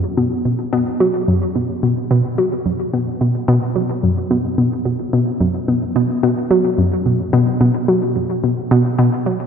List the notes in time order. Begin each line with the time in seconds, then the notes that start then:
0.17 B2
0.45 B2
0.73 B2
1.00 F#3
1.28 F#2
1.56 B2
1.83 B2
2.11 B2
2.38 F#3
2.66 F#2
2.93 B2
3.21 B2
3.48 B2
3.76 F#3
4.03 F#2
4.31 B2
4.58 B2
4.85 B2
5.13 B2
5.41 F#2
5.68 B2
5.96 B2
6.23 B2
6.51 F#3
6.78 F#2
7.06 B2
7.33 B2
7.61 B2
7.88 F#3
8.16 F#2
8.44 B2
8.71 B2
8.99 B2
9.26 F#3